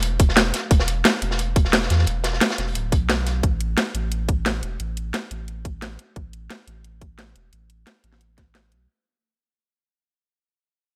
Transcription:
Already playing: sub bass E1
0.03 closed hi-hat
0.19 kick, closed hi-hat
0.29 snare
0.36 snare, closed hi-hat
0.54 snare, closed hi-hat
0.71 sub bass E1, kick, closed hi-hat
0.79 snare
0.88 closed hi-hat
1.05 snare, closed hi-hat
1.22 sub bass E1, closed hi-hat
1.31 snare
1.39 closed hi-hat
1.56 kick, closed hi-hat
1.65 snare
1.73 snare, closed hi-hat
1.83 snare
1.90 sub bass E2, snare, closed hi-hat
1.99 snare
2.06 sub bass E1, closed hi-hat
2.24 snare, closed hi-hat
2.33 snare
2.41 snare, closed hi-hat, open hi-hat
2.50 snare, closed hi-hat
2.58 sub bass E1, snare, closed hi-hat
2.68 open hi-hat
2.75 sub bass D1, closed hi-hat
2.92 sub bass B1, kick, closed hi-hat
3.09 snare, closed hi-hat
3.26 snare, closed hi-hat
3.43 sub bass A1, kick, closed hi-hat
3.61 closed hi-hat
3.78 snare, closed hi-hat
3.94 sub bass A1, closed hi-hat
4.12 closed hi-hat
4.29 kick, closed hi-hat
4.46 snare, closed hi-hat
4.63 sub bass E1, closed hi-hat
4.80 sub bass A1, closed hi-hat
4.97 closed hi-hat
5.14 snare, closed hi-hat
5.31 sub bass A1, closed hi-hat
5.48 closed hi-hat
5.65 kick, closed hi-hat
5.82 snare, closed hi-hat
5.99 closed hi-hat
6.16 sub bass A1, kick, closed hi-hat
6.33 closed hi-hat
6.50 snare, closed hi-hat
6.67 sub bass A1, closed hi-hat
6.84 closed hi-hat
7.01 kick, closed hi-hat
7.19 snare, closed hi-hat
7.35 sub bass E1, closed hi-hat
7.53 sub bass A1, closed hi-hat
7.70 closed hi-hat
7.87 snare, closed hi-hat
8.04 sub bass A1, closed hi-hat
8.13 snare
8.21 closed hi-hat
8.38 kick, snare, closed hi-hat
8.55 snare, closed hi-hat
8.72 sub bass B1, closed hi-hat

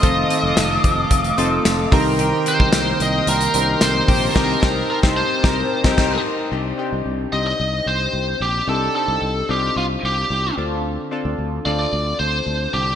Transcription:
Already playing: clean electric guitar A3 C4, synth keys C4 D#4 F4 C5, analog synth pad A4 D#5 F5, lead electric guitar D#5
0.02 fretless electric bass F1, clean electric guitar D#3 F4, synth keys C4 D#4 F4 A4, analog synth pad D6, kick, closed hi-hat
0.30 clean electric guitar C4, closed hi-hat
0.43 fretless electric bass F1
0.57 fretless electric bass F1, clean electric guitar A3, snare, closed hi-hat, tambourine
0.84 fretless electric bass F1, clean electric guitar C4, kick, closed hi-hat
1.11 fretless electric bass F1, clean electric guitar A3, kick, closed hi-hat
1.24 closed hi-hat
1.38 fretless electric bass F1, synth keys C4 D#4 F4 A4, clean electric guitar F4, closed hi-hat
1.65 fretless electric bass F1, clean electric guitar C4, snare, closed hi-hat, tambourine
1.91 fretless electric bass C2, synth keys C3 C4 D#4 G4 A#4, clean electric guitar D#3, analog synth pad A#4 G5 C6, kick, open hi-hat
2.19 clean electric guitar D#3 G4, closed hi-hat
2.46 clean electric guitar C4, lead electric guitar C5, closed hi-hat
2.60 fretless electric bass C2, kick
2.73 fretless electric bass C2, clean electric guitar A#3, snare, closed hi-hat, tambourine
3.00 fretless electric bass C2, clean electric guitar C4, lead electric guitar D#5, closed hi-hat
3.27 fretless electric bass C2, clean electric guitar A#3, lead electric guitar A#4, closed hi-hat
3.40 closed hi-hat
3.54 fretless electric bass C2, synth keys C4 D4 G4 A#4, clean electric guitar G4, closed hi-hat
3.61 synth keys D#4
3.81 fretless electric bass C2, clean electric guitar C4, lead electric guitar C5, snare, closed hi-hat, tambourine
4.08 fretless electric bass A#1, synth keys C3, clean electric guitar G4, analog synth pad A5, kick, open hi-hat
4.35 fretless electric bass C2, clean electric guitar D#3 G4, synth keys C4 D#4 G4 C5, lead electric guitar A#4, kick, snare, crash
4.62 fretless electric bass C2, synth keys C4 D#4 G4 C5, kick, snare
4.90 lead electric guitar A#4
5.02 fretless electric bass C2, synth keys C4 D#4 G4 C5, kick, snare
5.17 lead electric guitar C5
5.43 fretless electric bass C2, synth keys C4 D#4 G4 A#4, kick, snare
5.84 fretless electric bass C2, synth keys C4 D#4 G4 A#4, kick, snare
5.97 fretless electric bass C2, synth keys C4 D#4 G4 A#4, kick, snare, crash
6.51 fretless electric bass C2, synth keys C3 C4 D4 D#4 G4
6.78 synth keys C4 D4 D#4 G4
6.93 fretless electric bass C2
7.06 fretless electric bass C2
7.32 fretless electric bass C2, synth keys C4 D#4 G4, lead electric guitar D#5
7.47 lead electric guitar D#5
7.60 fretless electric bass C2
7.86 fretless electric bass C2, lead electric guitar C5
8.13 fretless electric bass C2
8.40 fretless electric bass A#1, lead electric guitar G4
8.67 fretless electric bass C2, synth keys C3 C4 D4 D#4 G4, lead electric guitar A4
8.95 synth keys C4 D4 D#4 G4, lead electric guitar A4
9.08 fretless electric bass C2
9.22 fretless electric bass C2
9.49 fretless electric bass C2, synth keys C4 D4 D#4 F4, lead electric guitar G4
9.76 fretless electric bass C2, lead electric guitar F4
10.03 fretless electric bass C2, lead electric guitar G4
10.30 fretless electric bass C2
10.57 fretless electric bass D2, synth keys D3 C4 D4 F4 A4
11.11 synth keys C4 D4 F4 A4
11.25 fretless electric bass D2
11.39 fretless electric bass D2
11.65 fretless electric bass D2, synth keys C4 D4 F4 A4, lead electric guitar D5
11.79 lead electric guitar D5
11.93 fretless electric bass D2
12.19 fretless electric bass D2, lead electric guitar C5
12.46 fretless electric bass D2
12.74 fretless electric bass C2, synth keys D3, lead electric guitar G4

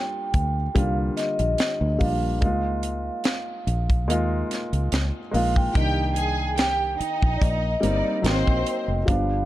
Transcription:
Already playing: grand piano G3 A#3 D4 F4, vibraphone G5
0.34 fingered electric bass D2, kick, closed hi-hat
0.75 fingered electric bass C2, grand piano D3 G3 A#3 F4, vibraphone F5, kick, closed hi-hat
1.17 vibraphone D#5, snare, closed hi-hat
1.39 fingered electric bass A#1, closed hi-hat
1.58 snare, closed hi-hat
1.81 fingered electric bass D2
1.99 fingered electric bass A#1, grand piano G3 A#3 D4 F4, vibraphone F5, kick, open hi-hat
2.41 fingered electric bass C#2, grand piano G#3 A#3 D#4 F4, kick, closed hi-hat
2.83 closed hi-hat
3.24 snare, closed hi-hat
3.67 fingered electric bass A#1, closed hi-hat
3.90 kick, closed hi-hat
4.08 fingered electric bass D#2, grand piano G#3 A#3 D#4 F4, closed hi-hat
4.51 snare, closed hi-hat
4.73 fingered electric bass C#2, closed hi-hat
4.92 fingered electric bass C#2, snare, closed hi-hat
5.31 fingered electric bass A#1, grand piano G#3 A#3 D#4, vibraphone F5, open hi-hat
5.36 grand piano F4
5.56 vibraphone G5, kick
5.73 fingered electric bass C2, grand piano D#3 A#3 D4 D#4, string section G4 G5, kick, closed hi-hat
6.16 string section G#4 G#5, closed hi-hat
6.57 string section G4 G5, vibraphone G5, snare, closed hi-hat
6.98 string section D#4 D#5, muted fingered electric bass stroke, closed hi-hat
7.22 fingered electric bass A#1, kick
7.36 vibraphone D5
7.41 fingered electric bass A#1, vibraphone D#5, kick, closed hi-hat
7.81 fingered electric bass G1, grand piano G3 A#3 C4 D#4, string section D#4 D5, closed hi-hat
8.22 fingered electric bass G#1, grand piano F#3 A#3 C4 D#4, string section C4 C5, closed hi-hat
8.26 snare
8.47 fingered electric bass A#1, kick
8.66 closed hi-hat
8.88 fingered electric bass F1
9.05 fingered electric bass G1, grand piano F3 G3 B3 D4, vibraphone F5, kick, closed hi-hat

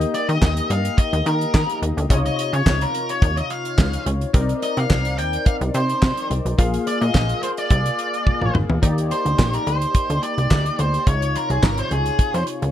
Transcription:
Already playing: analog polysynth A#3 D#4 G4 D#5
0.01 closed hi-hat
0.14 lead electric guitar D5, closed hi-hat
0.29 analog synth bass D#3, lead electric guitar D#5, closed hi-hat
0.42 analog synth bass D#2, kick, snare, clap
0.57 closed hi-hat
0.70 analog synth bass G2, lead electric guitar F5, closed hi-hat
0.85 closed hi-hat
0.98 lead electric guitar D#5, kick, closed hi-hat
1.13 analog synth bass D#2, closed hi-hat
1.26 analog synth bass D#3, lead electric guitar A#4, closed hi-hat
1.41 closed hi-hat
1.54 analog synth bass D#3, kick, snare, clap
1.69 closed hi-hat
1.82 analog synth bass D#2, closed hi-hat
1.97 analog synth bass D2, closed hi-hat
2.09 analog synth bass C#2, analog polysynth C3 D#4 F4 C#5, lead electric guitar D#5, kick, closed hi-hat
2.26 lead electric guitar D#5, closed hi-hat
2.39 closed hi-hat
2.53 analog synth bass C#3, lead electric guitar C#5, closed hi-hat
2.66 analog synth bass C#2, kick, snare, clap
2.81 lead electric guitar A#4, closed hi-hat
2.94 closed hi-hat
3.09 lead electric guitar C#5, closed hi-hat
3.22 analog synth bass D#2, kick, closed hi-hat
3.37 lead electric guitar D#5, closed hi-hat
3.50 lead electric guitar F5, closed hi-hat
3.65 closed hi-hat
3.78 analog synth bass C#2, kick, snare, clap
3.93 closed hi-hat
4.06 analog synth bass C#2, closed hi-hat
4.21 closed hi-hat
4.33 analog synth bass C2, analog polysynth C4 D4 A#4 D5, kick, closed hi-hat
4.40 analog polysynth D#4
4.49 closed hi-hat
4.62 lead electric guitar D#5, closed hi-hat
4.77 analog synth bass C3, lead electric guitar F5, closed hi-hat
4.90 analog synth bass C2, kick, snare, clap
5.05 closed hi-hat
5.18 analog synth bass D#2, lead electric guitar G5, closed hi-hat
5.33 closed hi-hat
5.46 lead electric guitar F5, kick, closed hi-hat
5.61 analog synth bass C2, closed hi-hat
5.74 analog synth bass C3, lead electric guitar C5, closed hi-hat
5.89 closed hi-hat
6.02 analog synth bass C3, kick, snare, clap
6.17 closed hi-hat
6.30 analog synth bass C2, closed hi-hat
6.45 analog synth bass B1, closed hi-hat
6.58 analog synth bass A#1, analog polysynth A#3 F4 G#4 F5, kick, closed hi-hat
6.74 closed hi-hat
6.87 lead electric guitar D5, closed hi-hat
7.01 analog synth bass A#2, lead electric guitar D#5, closed hi-hat
7.15 analog synth bass A#1, kick, snare, clap
7.29 closed hi-hat
7.43 lead electric guitar C5, closed hi-hat
7.57 lead electric guitar D5, closed hi-hat
7.70 analog synth bass C2, kick, closed hi-hat
7.86 closed hi-hat
7.99 closed hi-hat
8.14 closed hi-hat
8.27 kick, high tom
8.41 analog synth bass A#1, mid tom
8.55 analog synth bass G#1, mid tom
8.70 analog synth bass E2, floor tom
8.82 analog synth bass D#2, analog polysynth A#3 D#4 G4 D5, kick, closed hi-hat
8.98 closed hi-hat
9.11 lead electric guitar C5, closed hi-hat
9.25 analog synth bass D2, closed hi-hat
9.39 analog synth bass A#1, kick, snare, clap
9.53 lead electric guitar A#4, closed hi-hat
9.67 analog synth bass D2, lead electric guitar C5, closed hi-hat
9.82 closed hi-hat
9.94 kick, closed hi-hat
10.10 analog synth bass D2, closed hi-hat
10.23 lead electric guitar D5, closed hi-hat
10.38 analog synth bass C2, closed hi-hat
10.51 analog synth bass D2, kick, snare, clap
10.66 closed hi-hat
10.79 analog synth bass D2, lead electric guitar C5, closed hi-hat
10.94 closed hi-hat
11.06 analog synth bass C#2, analog polysynth C3 D#4 F4 C#5, lead electric guitar C#5, kick, closed hi-hat
11.22 closed hi-hat
11.35 lead electric guitar A#4, closed hi-hat
11.50 analog synth bass C2, lead electric guitar G#4, closed hi-hat
11.63 analog synth bass G#1, lead electric guitar A#4, kick, snare, clap
11.78 lead electric guitar C5, closed hi-hat
11.91 analog synth bass C#2, lead electric guitar G#4, closed hi-hat
12.06 closed hi-hat
12.19 kick, closed hi-hat
12.34 analog synth bass F2, lead electric guitar C5, closed hi-hat
12.47 closed hi-hat
12.62 analog synth bass C#2, closed hi-hat

